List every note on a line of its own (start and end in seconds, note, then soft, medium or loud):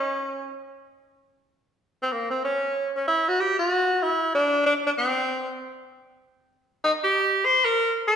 0.00 0.52 C#4 medium
2.02 2.14 C4 medium
2.12 2.30 A#3 medium
2.31 2.42 C4 medium
2.45 2.91 C#4 loud
2.96 3.06 C#4 medium
3.08 3.30 E4 loud
3.28 3.42 F#4 medium
3.40 3.58 G4 medium
3.59 4.04 F#4 loud
4.03 4.32 E4 medium
4.35 4.62 D4 medium
4.66 4.74 D4 medium
4.87 4.91 D4 medium
4.98 5.54 C4 medium
6.84 6.92 D#4 medium
7.04 7.46 G4 loud
7.45 7.66 C5 loud
7.65 7.95 A#4 loud
8.08 8.16 A4 loud